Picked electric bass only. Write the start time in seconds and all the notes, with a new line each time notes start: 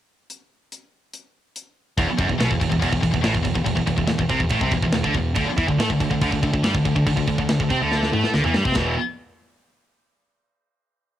1.97 E1
2.09 muted picked electric bass stroke
2.18 F#1
2.30 E1
2.41 B1
2.51 E1
2.61 E1
2.72 E1
2.82 E1
2.92 E1
3.03 E1
3.13 E1
3.24 A1
3.35 E1
3.45 E1
3.55 E1
3.66 E1
3.77 E1
3.88 E1
3.97 E1
4.08 E1
4.19 E1
4.30 C2
4.40 E1
4.50 A1
4.61 C2
4.71 E1
4.83 E1
4.94 E1
5.04 D2
5.14 E1
5.36 D2
5.48 muted picked electric bass stroke
5.57 E2
5.68 D2
5.78 A2
5.90 D2
6.00 D2
6.11 D2
6.21 D2
6.33 D2
6.43 D2
6.53 D2
6.63 G2
6.74 D2
6.85 D2
6.96 D2
7.06 D2
7.17 D2
7.27 D2
7.39 D2
7.50 D2
7.60 D2
7.70 C3
7.81 D2
8.12 A2
8.34 D2
8.45 E2
8.55 G2
8.65 C3
8.76 E1